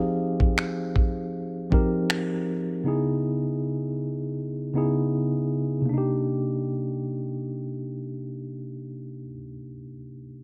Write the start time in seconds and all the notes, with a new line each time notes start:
Already playing: F3 C4 D#4 G4 G#4 C5
0.40 kick
0.58 finger snap
0.96 kick
1.70 F3 C4 D#4 G4 A#4, kick
2.10 finger snap
2.84 C#3 B3 D#4 E4
2.88 G#4
4.74 C#3 B3 D#4 E4
4.78 G#4
5.81 C3
5.86 A#3 D4
5.93 D#4
5.98 G4